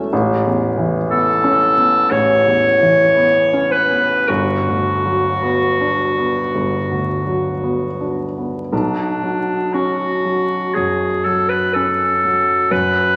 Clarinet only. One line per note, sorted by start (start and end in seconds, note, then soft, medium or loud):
1.09 2.12 A4 medium
2.11 3.73 C#5 loud
3.72 4.30 B4 medium
4.28 8.19 F#4 medium
8.71 9.75 D4 medium
9.74 10.76 F#4 medium
10.74 11.26 G#4 medium
11.24 11.51 A4 medium
11.49 11.75 B4 medium
11.74 12.73 A4 medium
12.71 13.16 B4 medium